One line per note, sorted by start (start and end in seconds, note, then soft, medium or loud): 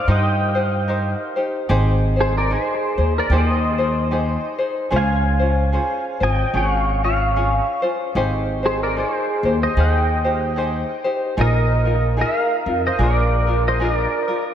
0.07 1.13 G2 medium
0.07 0.55 D#4 medium
0.07 0.55 G4 medium
0.07 0.56 A#4 medium
0.07 0.54 C5 medium
0.07 0.66 G5 medium
0.12 0.87 D#5 medium
0.55 0.87 D#4 soft
0.55 0.88 G4 soft
0.55 0.88 C5 medium
0.66 0.86 F5 medium
0.88 1.36 D#4 medium
0.88 1.36 G4 medium
0.88 1.36 A#4 medium
0.88 1.35 C5 medium
1.36 1.69 D#4 soft
1.36 1.68 G4 medium
1.36 1.69 C5 medium
1.69 2.53 G#1 medium
1.69 2.17 D#4 medium
1.69 2.17 G4 medium
1.69 2.16 G#4 medium
1.69 2.15 C5 loud
2.16 2.49 D#4 soft
2.16 2.50 G#4 soft
2.16 2.50 C5 soft
2.21 2.35 G#4 medium
2.21 2.36 C5 medium
2.37 2.51 A#4 medium
2.37 2.53 D5 medium
2.50 2.98 D#4 medium
2.50 2.98 G#4 medium
2.50 3.12 G#4 medium
2.50 2.97 C5 medium
2.55 3.19 C5 medium
2.98 3.19 D#2 medium
2.98 3.31 D#4 soft
2.98 3.31 G#4 soft
2.98 3.31 C5 soft
3.18 3.32 A#4 medium
3.18 3.34 D5 medium
3.30 4.35 D#2 medium
3.30 3.79 D#4 medium
3.30 3.79 G4 medium
3.30 3.78 G#4 medium
3.30 3.77 C5 medium
3.35 4.58 C5 medium
3.35 4.58 D#5 medium
3.78 4.10 D#4 soft
3.78 4.11 G#4 soft
3.78 4.12 C5 medium
4.11 4.59 D#4 medium
4.11 4.59 G4 medium
4.11 4.58 G#4 medium
4.11 4.57 C5 medium
4.58 4.91 D#4 soft
4.58 4.89 G#4 soft
4.58 4.91 C5 medium
4.91 5.76 C#2 medium
4.91 5.40 C#4 medium
4.91 5.40 F4 medium
4.91 5.39 G#4 medium
4.91 5.38 C5 medium
4.96 6.19 F5 medium
4.96 6.23 G#5 medium
5.39 5.72 C#4 soft
5.39 5.73 F4 soft
5.39 5.73 C5 soft
5.72 6.21 C#4 medium
5.72 6.21 F4 medium
5.72 6.21 G#4 medium
5.72 6.19 C5 medium
6.20 6.42 G#1 medium
6.20 6.53 C#4 soft
6.20 6.53 F4 soft
6.20 6.54 C5 soft
6.20 6.53 D#5 medium
6.20 6.56 G5 medium
6.54 7.59 G#1 medium
6.54 7.02 C#4 medium
6.54 7.02 F4 medium
6.54 7.02 G#4 medium
6.54 7.00 C#5 medium
6.54 6.75 F#5 medium
6.75 7.03 F5 medium
7.04 7.35 C#4 soft
7.04 7.36 F4 soft
7.04 7.80 C#5 medium
7.04 7.80 F5 medium
7.36 7.83 C#4 medium
7.36 7.82 F4 medium
7.36 7.83 G#4 medium
7.82 8.15 C#4 soft
7.82 8.15 F4 soft
7.82 8.15 C5 medium
8.15 8.99 G#1 medium
8.15 8.64 D#4 medium
8.15 8.63 G4 medium
8.15 8.63 G#4 medium
8.15 8.62 C5 medium
8.63 8.96 D#4 soft
8.63 8.96 G4 soft
8.63 8.80 G#4 medium
8.63 8.96 C5 soft
8.63 8.82 C5 medium
8.83 8.97 A#4 medium
8.83 8.98 D5 medium
8.96 9.44 D#4 medium
8.96 9.44 G#4 medium
8.96 9.58 G#4 medium
8.96 9.44 C5 medium
8.96 9.62 C5 medium
9.43 9.65 D#2 medium
9.43 9.76 G4 soft
9.43 9.77 C5 soft
9.47 9.76 D#4 soft
9.63 9.77 C5 medium
9.63 9.79 D#5 medium
9.77 10.82 D#2 medium
9.77 10.25 D#4 medium
9.77 10.24 G4 medium
9.77 10.25 G#4 medium
9.77 10.23 C5 medium
9.77 11.03 D#5 medium
9.77 11.03 G5 medium
10.25 10.56 D#4 soft
10.25 10.56 G4 soft
10.25 10.57 C5 medium
10.56 11.05 D#4 medium
10.56 11.04 G4 medium
10.56 11.05 G#4 medium
10.56 11.03 C5 medium
11.04 11.36 D#4 medium
11.04 11.38 G4 medium
11.04 11.38 C5 medium
11.37 12.22 A#1 medium
11.37 11.86 D#4 medium
11.37 11.85 F4 medium
11.37 11.84 G#4 medium
11.37 11.84 A#4 medium
11.41 12.17 A#4 medium
11.41 12.21 D#5 medium
11.85 12.17 D#4 soft
11.85 12.17 F4 soft
11.85 12.16 A#4 soft
12.17 12.66 D#4 medium
12.17 12.66 F4 medium
12.17 12.66 G#4 medium
12.17 12.65 A#4 medium
12.21 12.81 A#4 medium
12.21 12.38 E5 medium
12.38 12.86 F5 medium
12.66 12.88 F2 medium
12.66 12.99 D#4 soft
12.66 12.99 F4 soft
12.66 12.98 A#4 soft
12.87 13.01 C5 medium
12.87 13.02 D#5 medium
12.99 14.04 A#1 medium
12.99 13.48 D4 medium
12.99 13.47 F4 medium
12.99 13.47 G#4 medium
12.99 13.46 A#4 medium
13.03 13.63 A#4 medium
13.03 13.68 D5 medium
13.47 13.79 D4 soft
13.47 13.80 F4 medium
13.47 13.80 A#4 soft
13.68 13.82 C5 medium
13.68 13.83 D#5 medium
13.80 14.29 D4 medium
13.80 14.28 F4 medium
13.80 14.28 G#4 medium
13.80 14.27 A#4 medium
13.84 14.43 A#4 medium
13.84 14.43 D5 medium
14.28 14.54 D4 soft
14.28 14.54 F4 soft
14.28 14.54 A#4 medium